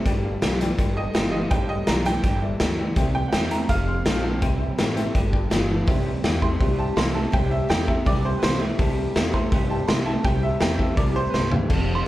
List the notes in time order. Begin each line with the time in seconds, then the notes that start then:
0.05 G1 G2 D3 G3 B4 D5 G5, kick, closed hi-hat
0.25 B4 D5 F5
0.42 B1 G2 E3 G3 B3 F4 B4 D5 G5, snare, closed hi-hat
0.60 G2 E3 B3 F4 B4 D5 G5, closed hi-hat
0.78 G1 G2 D3 B4 D5 G5, kick, closed hi-hat
0.97 B4 D5 D#5 G5
1.14 G1 G2 E3 G3 B3 F4 D5 F5 G5, snare, closed hi-hat
1.32 G2 E3 B4 D5 D#5 G5
1.50 G1 G2 D3 G3 B4 D5 F5 G5, kick, closed hi-hat
1.69 B4 D5 D#5 G5
1.87 B1 G2 E3 G3 B3 F4 B4 D5 G5 A#5, snare, closed hi-hat
2.05 G2 E3 B3 F4 B4 D5 G5, closed hi-hat
2.23 G1 G2 D3 E3 B4 D5 G5, kick, closed hi-hat
2.42 B4 D5 E5
2.60 D2 G2 D3 E3 B4 D5 G5, snare, closed hi-hat
2.79 G2 E3 B4 D5 G5
2.96 C2 C3 G3 C5 E5 G5, kick, closed hi-hat
3.15 C5 E5 G5
3.28 E3 F#5
3.33 E2 C3 A3 A#3 C4 E4 C5 E5 G5, snare, closed hi-hat
3.51 C3 A3 C4 E4 C5 E5 G5 A#5, closed hi-hat
3.69 F1 F2 C3 C5 F5 A5, kick, closed hi-hat
3.87 C5 F5 C6
4.05 A#1 F2 D3 D#3 A3 C4 F4 C5 F5 C6, snare, closed hi-hat
4.23 F2 D3 C4 F4 C5 F5 A5
4.42 C2 C3 G3 C5 E5 G5, kick, closed hi-hat
4.60 C5 E5 G5
4.78 A1 C3 E3 A3 A#3 C4 E4 C5 E5 G5, snare, closed hi-hat
4.96 C3 A3 C4 E4 C5 E5 G5, closed hi-hat
5.15 G1 G2 D3 G3 B4 D5 G5, kick, closed hi-hat
5.33 B4 D5 G5, kick
5.50 G1 G2 E3 G3 B3 F4 B4 D5 G5, snare, closed hi-hat
5.69 G2 E3 B3 F4 B4 D5 A5
5.87 C2 C3 G3 C5 E5 G5, kick, open hi-hat
6.06 C5 E5 G5
6.23 E2 C3 E3 A3 A#3 C4 E4 C5 E5 G5, snare, open hi-hat
6.41 C3 A3 C4 E4 C5 E5 G5 C6, kick
6.60 C2 G2 C3 G3 C5 E5 G5, kick, open hi-hat
6.78 C5 E5 G5 A5
6.96 C2 C3 E3 A3 A#3 C4 E4 E5 G5 C6, snare, open hi-hat
7.14 C3 A3 C4 E4 C5 E5 A5
7.32 C2 C3 G3 C5 E5 G5, kick, open hi-hat
7.51 C5 E5 A5
7.69 E2 C3 E3 A3 A#3 C4 E4 E5 G5, snare, open hi-hat
7.87 C3 A3 C4 E4 C5 E5 A#5, kick
8.06 C2 G2 C3 G3 C5 D5 E5 G5, kick, open hi-hat
8.24 C5 E5 G5
8.39 C2 E3 A#3 B4
8.43 C3 A3 C4 E4 C5 E5 G5, snare, open hi-hat
8.60 C3 A3 C4 E4 C5 E5 G5
8.79 C2 C3 G3 C5 E5 A5, kick, open hi-hat
8.97 C5 E5 A5
9.15 E2 C3 E3 A3 A#3 C4 E4 C5 E5 G5, snare, open hi-hat
9.33 C3 A3 C4 E4 C5 E5 A#5 C6, kick
9.52 C2 G2 C3 G3 E5 G5, kick, open hi-hat
9.70 C5 E5 G5 A5
9.87 C2 C3 E3 A3 A#3 C4 E4 C5 E5 A#5 C6, snare, open hi-hat
10.05 C3 A3 C4 E4 C5 E5 G5 A5
10.24 C2 C3 G3 C5 E5 G5, kick, open hi-hat
10.43 C5 E5 A5
10.60 E2 C3 E3 A3 A#3 C4 E4 C5 E5 G5 A#5, snare, open hi-hat
10.79 C3 A3 C5 E5 A5, kick
10.97 C2 A2 C3 G3 C5 D5 E5 A#5, kick, open hi-hat
11.15 C5 E5 G5
11.30 C2 G2 C3 B4 E5 A5
11.34 A3 C5, snare
11.51 C3 A3 C5 E5 G5, floor tom
11.69 F1 F2 C3 C5 F5 A5, kick, open hi-hat, crash
11.87 C5 F5 A5
11.95 C6